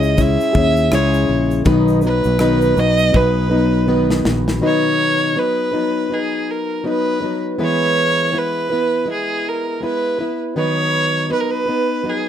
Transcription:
0.00 0.37 C#2 medium
0.00 0.17 C#4 soft
0.00 0.18 E4 soft
0.00 0.18 G#4 medium
0.00 0.23 D#5 medium
0.00 shaker soft
0.16 0.54 G#3 medium
0.16 0.55 C#4 medium
0.16 0.54 E4 medium
0.16 0.52 G#4 medium
0.16 kick medium
0.16 shaker medium
0.21 0.96 E5 loud
0.41 shaker soft
0.53 0.89 D#2 medium
0.53 0.91 C#4 soft
0.53 0.91 E4 medium
0.53 0.91 G#4 medium
0.53 kick medium
0.77 shaker medium
0.91 1.26 C#2 medium
0.91 1.65 C#3 medium
0.91 1.65 G#3 medium
0.91 1.65 C#4 medium
0.91 1.66 E4 medium
0.91 1.66 G#4 medium
0.91 1.53 C#5 medium
0.91 cross-stick loud
0.91 shaker medium
1.14 shaker soft
1.29 1.63 A#1 medium
1.51 shaker soft
1.64 2.22 B1 medium
1.64 2.03 B2 medium
1.64 2.03 D#3 loud
1.64 2.03 F#3 medium
1.64 2.03 B3 loud
1.64 2.02 D#4 loud
1.64 2.01 B4 medium
1.64 kick loud
1.64 shaker medium
1.88 shaker soft
2.01 2.39 F#3 soft
2.01 2.39 B3 soft
2.01 2.39 D#4 soft
2.01 2.40 B4 soft
2.01 shaker soft
2.06 2.81 B4 medium
2.24 2.73 B1 medium
2.24 shaker medium
2.39 2.77 B2 medium
2.39 2.77 D#3 medium
2.39 2.77 F#3 medium
2.39 2.77 B3 medium
2.39 2.76 D#4 medium
2.39 2.74 B4 medium
2.39 cross-stick loud
2.39 shaker medium
2.62 shaker soft
2.76 3.11 B1 medium
2.76 3.11 F#3 soft
2.76 3.12 B3 soft
2.76 3.14 D#4 soft
2.76 3.14 B4 soft
2.76 shaker medium
2.80 3.18 D#5 loud
2.98 shaker soft
3.13 4.22 B1 loud
3.13 3.51 F#3 medium
3.13 3.51 B3 medium
3.13 3.50 D#4 medium
3.13 3.48 B4 medium
3.13 4.27 B4 medium
3.13 kick medium
3.50 3.87 F#3 soft
3.50 3.87 B3 soft
3.50 3.87 D#4 medium
3.50 3.88 B4 medium
3.88 4.61 D#3 medium
3.88 4.61 F#3 medium
3.88 4.62 B3 medium
3.88 4.62 D#4 medium
3.88 4.63 B4 medium
4.10 snare medium
4.25 4.60 A#1 medium
4.25 snare loud
4.48 snare medium
4.61 5.36 B2 medium
4.61 5.36 D#3 medium
4.61 5.33 F#3 medium
4.61 5.36 B3 medium
4.61 5.36 D#4 medium
4.61 5.38 B4 medium
4.66 5.40 C#5 loud
5.35 5.73 F#3 soft
5.35 5.73 B3 soft
5.35 5.72 D#4 soft
5.35 5.70 B4 medium
5.39 6.15 B4 medium
5.72 6.08 F#3 soft
5.72 6.10 B3 soft
5.72 6.11 D#4 soft
5.72 6.10 B4 soft
6.10 6.83 F#3 soft
6.10 6.84 B3 soft
6.10 6.85 D#4 medium
6.10 6.52 G#4 medium
6.50 6.86 A#4 medium
6.84 7.22 F#3 soft
6.84 7.22 B3 soft
6.84 7.21 D#4 medium
6.84 7.19 B4 soft
6.89 7.43 B4 medium
7.21 7.58 F#3 soft
7.21 7.58 B3 soft
7.21 7.59 D#4 soft
7.21 7.59 B4 soft
7.58 8.33 E3 medium
7.58 8.31 G#3 medium
7.58 8.33 B3 medium
7.58 8.33 E4 medium
7.58 8.35 B4 medium
7.64 8.39 C#5 loud
8.32 8.70 G#3 soft
8.32 8.71 B3 soft
8.32 8.70 E4 medium
8.32 8.69 B4 soft
8.38 9.10 B4 loud
8.70 9.06 B3 soft
8.70 9.07 E4 soft
8.70 9.07 B4 soft
9.06 9.79 G#3 soft
9.06 9.81 B3 medium
9.06 9.82 E4 medium
9.12 9.50 G#4 medium
9.48 9.84 A#4 medium
9.81 10.18 G#3 soft
9.81 10.19 B3 soft
9.81 10.19 E4 medium
9.81 10.18 B4 soft
9.85 10.39 B4 medium
10.19 10.55 B3 soft
10.19 10.57 E4 soft
10.19 10.56 B4 soft
10.56 11.30 D#3 medium
10.56 11.29 F#3 medium
10.56 11.29 B3 medium
10.56 11.30 D#4 medium
10.56 11.31 B4 medium
10.56 11.27 C#5 loud
11.29 11.67 F#3 soft
11.29 11.67 B3 soft
11.29 11.67 D#4 medium
11.29 11.65 B4 medium
11.29 11.42 B4 medium
11.40 11.52 A#4 medium
11.51 12.11 B4 medium
11.66 12.04 B3 soft
11.66 12.05 D#4 soft
11.66 12.04 B4 soft
12.04 12.29 F#3 soft
12.04 12.29 B3 medium
12.04 12.29 D#4 medium
12.09 12.29 G#4 medium

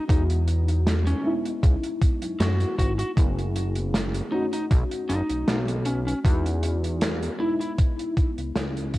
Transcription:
0.00 0.11 A3 loud
0.00 0.11 C#4 medium
0.00 0.10 D#4 medium
0.00 0.11 F#4 loud
0.08 1.14 E2 loud
0.08 1.17 G#3 medium
0.08 1.17 B3 medium
0.08 0.23 D#4 medium
0.08 1.18 D#4 medium
0.08 1.18 F#4 medium
0.08 kick loud
0.08 closed hi-hat loud
0.30 closed hi-hat medium
0.48 closed hi-hat medium
0.68 closed hi-hat soft
0.87 snare loud
0.87 closed hi-hat loud
1.07 1.33 C#4 medium
1.07 closed hi-hat medium
1.23 3.09 G#3 medium
1.23 3.10 B3 medium
1.23 3.10 D#4 medium
1.23 3.11 E4 loud
1.45 closed hi-hat medium
1.63 1.76 C#2 loud
1.63 kick loud
1.63 closed hi-hat loud
1.83 closed hi-hat medium
2.02 kick loud
2.02 closed hi-hat medium
2.22 2.37 F#2 soft
2.22 closed hi-hat medium
2.40 2.65 F#2 medium
2.40 2.75 F#4 medium
2.40 snare loud
2.40 closed hi-hat loud
2.60 closed hi-hat medium
2.78 3.03 G#1 medium
2.78 2.92 F#4 medium
2.78 kick medium
2.78 closed hi-hat medium
2.99 3.10 F#4 medium
2.99 closed hi-hat medium
3.16 4.22 F#1 loud
3.16 4.25 A3 medium
3.16 4.25 B3 medium
3.16 4.26 E4 medium
3.16 4.26 G#4 medium
3.16 kick loud
3.16 closed hi-hat loud
3.39 closed hi-hat soft
3.56 closed hi-hat medium
3.75 closed hi-hat medium
3.94 snare loud
3.94 closed hi-hat loud
4.14 closed hi-hat soft
4.31 6.17 A3 loud
4.31 6.17 C#4 medium
4.31 4.45 D#4 medium
4.31 6.18 D#4 medium
4.31 6.18 F#4 loud
4.53 4.64 D#4 medium
4.53 closed hi-hat medium
4.71 4.84 B1 loud
4.71 kick loud
4.71 closed hi-hat medium
4.91 closed hi-hat medium
5.09 5.22 F#1 medium
5.09 5.56 D#4 medium
5.09 closed hi-hat medium
5.29 5.44 B1 soft
5.29 closed hi-hat medium
5.48 6.14 B1 medium
5.48 snare loud
5.48 closed hi-hat loud
5.68 closed hi-hat medium
5.85 5.99 C#4 medium
5.85 closed hi-hat medium
6.07 6.18 C#4 medium
6.07 closed hi-hat medium
6.24 7.29 E2 loud
6.24 7.32 G#3 medium
6.24 7.33 B3 medium
6.24 7.33 D#4 medium
6.24 7.34 F#4 medium
6.24 kick loud
6.24 closed hi-hat medium
6.46 closed hi-hat medium
6.63 closed hi-hat medium
6.84 closed hi-hat medium
7.01 snare loud
7.01 closed hi-hat loud
7.23 closed hi-hat medium
7.39 8.98 G#3 medium
7.39 8.98 B3 medium
7.39 8.98 D#4 medium
7.39 7.53 E4 medium
7.39 8.98 E4 loud
7.60 7.72 E4 medium
7.60 closed hi-hat medium
7.78 kick loud
7.78 closed hi-hat medium
7.99 closed hi-hat medium
8.17 kick loud
8.17 closed hi-hat medium
8.38 8.52 C#2 soft
8.38 closed hi-hat soft
8.55 8.98 C#2 medium
8.55 snare loud
8.55 closed hi-hat medium
8.77 closed hi-hat medium
8.94 kick medium
8.94 closed hi-hat medium

